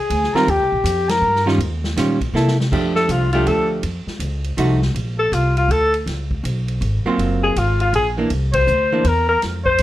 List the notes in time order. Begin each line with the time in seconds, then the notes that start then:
Already playing: G#4 G#5
0.10 D2, ride
0.24 snare
0.33 D#3 G3 C4 F4 A#4 A#5, muted upright bass stroke, snare
0.47 D#2 G4 G5, ride
0.60 C2
0.72 A#1
0.84 F2, hi-hat pedal, ride
1.09 A#4 A#5, snare, ride
1.21 G2
1.36 snare
1.46 D#3 G3 C#4 F4, snare
1.58 D#2, ride
1.84 snare
1.96 A#2 D#3 G3 C#4 F4, snare, hi-hat pedal, ride
2.21 kick, ride
2.33 C3 A#3 E4 A4, snare
2.48 snare
2.60 snare
2.72 F2 F3 A3 D4 G4, kick, crash
2.95 A4, snare
3.08 C2 F4, hi-hat pedal, ride
3.33 F3 A3 D4 F4 G4, ride
3.46 D2 A4, ride
3.83 F2, ride
4.07 muted upright bass stroke, snare
4.19 C#2, hi-hat pedal, ride
4.44 ride
4.57 C2 F3 A3 D#4 F#4, hi-hat pedal, ride
4.82 snare
4.94 A#1, ride
5.18 A4
5.32 C2 F4, hi-hat pedal, ride
5.57 F4, ride
5.68 D2 A4, ride
5.94 ride
6.06 C#2, snare, ride
6.31 kick
6.44 B1, hi-hat pedal, ride
6.68 ride
6.81 G#1, ride
7.05 F#3 A#3 C4 F4, muted upright bass stroke
7.18 F#1, ride
7.43 G#4
7.56 G#1 F4, hi-hat pedal, ride
7.80 F4, ride
7.93 A#1 G#4, ride
8.18 E3 A#3 D4
8.30 C2, ride
8.53 C5, kick, ride
8.67 D2, hi-hat pedal
8.92 E3 A#3 D4
9.05 E2 A#4, ride
9.29 A#4
9.42 F2, snare, ride
9.65 C5, kick
9.78 G2, hi-hat pedal, ride